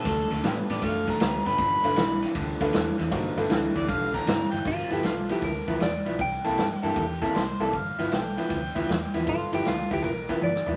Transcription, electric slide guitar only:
X:1
M:4/4
L:1/8
Q:"Swing" 1/4=156
K:Gmix
V:1 name="Electric slide guitar"
z8 | z8 | z8 | F G F G _B2 d2 |
g6 z2 | z8 | F G F G _B2 d2 |]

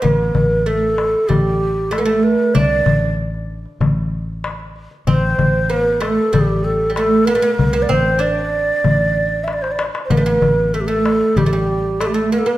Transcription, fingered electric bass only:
X:1
M:4/4
L:1/8
Q:1/4=95
K:none
V:1 name="Fingered electric bass" clef=bass
A,,, A,,,3 A,,,4 | C,, A,,,3 A,,,4 | A,,, A,,,3 A,,,4 | C,, A,,,3 A,,,4 |
A,,, A,,,3 A,,,4 |]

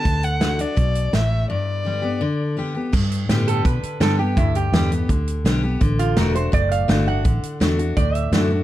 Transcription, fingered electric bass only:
X:1
M:4/4
L:1/8
Q:1/4=167
K:G
V:1 name="Fingered electric bass" clef=bass
D,,4 B,,,2 A,,,2 | z8 | G,,2 A,,2 B,, z G,,2 | D,,2 E,,2 D,,2 B,,,2 |
A,,,2 E,,,2 F,,,2 G,,,2 | A,,, z E,,2 D,,2 F,,2 |]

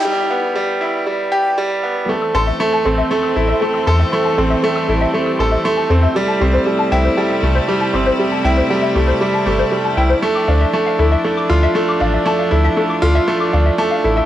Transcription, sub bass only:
X:1
M:4/4
L:1/8
Q:1/4=118
K:Am
V:1 name="Sub bass" clef=bass
z8 | z A,,, z A,,, z A,,, z E,, | z A,,, z A,,, z A,,, z E,, | z C,, z C,, z C,, z G,,, |
z C,, z C,, z G,,, z C,, | z D,, z D,, z D,, z A,,, | z D,, z D,, z D,, z A,,, |]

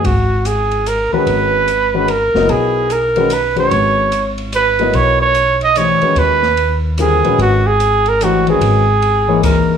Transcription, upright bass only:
X:1
M:3/4
L:1/8
Q:"Swing" 1/4=147
K:G#m
V:1 name="Upright bass" clef=bass
G,,,4- G,,, z | G,,,4- G,,, F,,, | B,,,6 | G,,,6 |
B,,,4- B,,, z | D,,4- D,, A,,, | G,,,6 | G,,,4- G,,, z |]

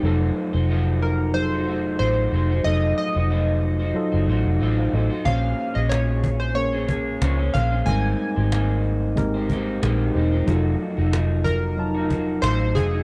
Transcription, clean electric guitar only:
X:1
M:4/4
L:1/16
Q:"Swing 16ths" 1/4=92
K:Fm
V:1 name="Clean electric guitar"
[F,=A,E_Gc]3 [EGc] [F,EGc]4- [F,EGc] [EGc] [A,EGc]2 [F,A,EGc]2 [A,EGc] [EGc] | [F,=A,E_Gc]3 [EGc] [F,A,EGc]3 [EGc]2 [EGc] [A,EGc]2 [F,A,EGc]2 [A,EGc] [EGc] | [B,,F,A,DAc]3 [A,DAc] [B,,F,A,DA]4- [B,,F,A,DA] [A,DAc] [A,DA]2 [B,,F,A,DAc] [A,DAc] [A,DAc] [A,DAc] | [A,B,Ec]3 [EGc] [A,B,Ec]4- [A,B,Ec] [EGc] [B,EGc]2 [A,B,EGc]2 [B,EGc] [EGc] |
[F,=A,E_G]3 [A,EG] [F,EG]4- [F,EG] [A,EG] [F,EG]2 [F,A,EG] [A,EG] [F,A,EG] [A,EG] |]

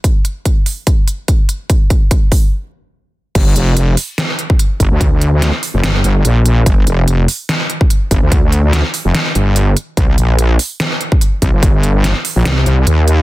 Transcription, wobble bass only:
X:1
M:4/4
L:1/16
Q:"Swing 16ths" 1/4=145
K:Gm
V:1 name="Wobble bass" clef=bass
z16 | z16 | G,,,2 F,,,4 z8 G,,, D,,- | D,,4- D,, z2 F,,, G,,,2 G,,,2 B,,,4 |
G,,,2 F,,,4 z8 G,,, D,,- | D,,4- D,, z2 F,,, z2 G,,,4 z2 | C,,2 B,,,4 z8 C,, G,,,- | G,,,4- G,,, z2 B,,, C,,2 C,,2 E,,4 |]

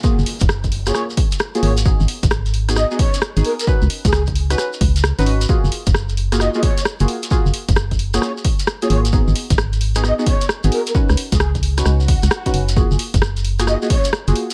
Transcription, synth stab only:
X:1
M:4/4
L:1/16
Q:"Swing 16ths" 1/4=132
K:F#
V:1 name="Synth stab"
[A,EFG] z6 [A,EFG]2 z4 [A,EFG] [A,EFG] z | [B,DFG]2 z4 z [B,DFG]2 [B,DFG] z3 [B,DFG]2 z | [CDFB] z6 [CDFB]2 z4 [CDFB] [CDFB] z | [A,EFG]2 z4 z [A,EFG]2 [A,EFG] z3 [A,EFG]2 z |
[A,EFG] z6 [A,EFG]2 z4 [A,EFG] [A,EFG] z | [B,DFG]2 z4 z [B,DFG]2 [B,DFG] z3 [B,DFG]2 z | [CDFB] z6 [CDFB]2 z4 [CDFB]2 z | [A,EFG]2 z4 z [A,EFG]2 [A,EFG] z3 [A,EFG]2 z |]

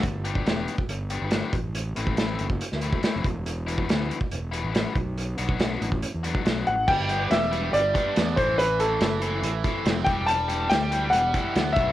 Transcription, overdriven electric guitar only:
X:1
M:4/4
L:1/8
Q:1/4=140
K:G
V:1 name="Overdriven electric guitar"
z [G,B,DG] [G,B,DG] z2 [G,B,DG] [G,B,DG] z | z [E,A,CE] [E,A,CE] z2 [E,A,CE] [E,A,CE] z | z [E,G,B,E] [E,G,B,E] z2 [E,G,B,E] [E,G,B,E] z | z [F,B,DF] [F,B,DF] z2 [F,B,DF] [F,B,DF] z |
z [G,B,DG] z [G,B,DG] z [G,B,DG] z [E,CEA] | z [E,CEA] z [E,CEA] z [E,CEA] z [E,G,EG] | z [E,G,EG] z [E,G,EG] z [E,G,EG] z [F,B,DF] |]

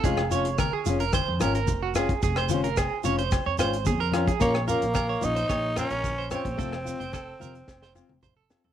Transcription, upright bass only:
X:1
M:4/4
L:1/16
Q:1/4=110
K:Bbm
V:1 name="Upright bass" clef=bass
F,,,6 F,,,3 F,, A,,,2 F,,,4 | F,,,6 F,,,3 F,, A,,,2 F,,4 | B,,,3 B,,,3 B,,,2 B,,,3 B,,,4 B,,, | F,,,3 F,,,3 F,,,2 F,,,3 F,,,4 F,,, |]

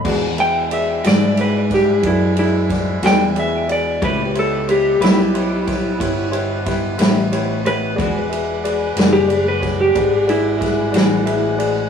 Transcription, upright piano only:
X:1
M:12/8
L:1/8
Q:3/8=61
K:Emix
V:1 name="Upright piano"
[FGBd] [FGBe] [FGBd] [FGBd] [FGBd] [FGBd] [FGBd] [FGBd] [FGBd] [FGBd] [FGBd] [FGBd] | [E=GBc] [EGBc] [EGBc] [EGBc] [EGBc] [EGBc] [EGBc] [EGBc] [EGBe] [EGBe] [EGBc] [EGBc] | [FGBd] [FGBe] [FGBd] [FGBd] [FGBd] [FGBc] [FGBd] [FGBd] [FGBe] [FGBd] [FGBe] [FGBd] |]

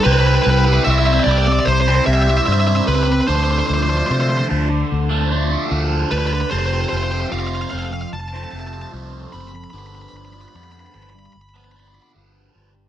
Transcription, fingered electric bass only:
X:1
M:4/4
L:1/8
Q:1/4=74
K:C
V:1 name="Fingered electric bass" clef=bass
C,, C,, C,, C,, C,, C,, G,, _D,, | D,, D,, C, D,, D,,2 D,, D,, | F,,, F,,, F,,, F,,, F,,, F,,, C,, ^F,,, | G,,, G,,, F,, G,,, G,,,2 G,,, G,,, |]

